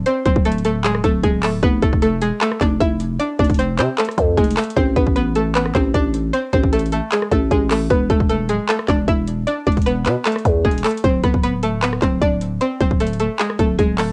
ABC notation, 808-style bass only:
X:1
M:4/4
L:1/16
Q:1/4=153
K:Am
V:1 name="808-style bass" clef=bass
z2 D,,, D,,,6- D,,, D,,,2 D,,,4 | F,,,2 F,,,4 E,,, z3 F,,,2 F,,,4 | z2 F,,,4 C, z3 F,,2 F,,,2 z2 | A,,,2 A,,,8 A,,,2 A,,,4 |
z2 A,,,4- A,,, z3 A,,,2 A,,,4 | E,,,2 E,,,4 D,,, z3 E,,,2 E,,,4 | z2 E,,,4 B,, z3 E,,2 E,,,2 z2 | D,,,2 D,,,8 D,,,2 D,,,4 |
z2 D,,,4- D,,, z3 D,,,2 D,,,4 |]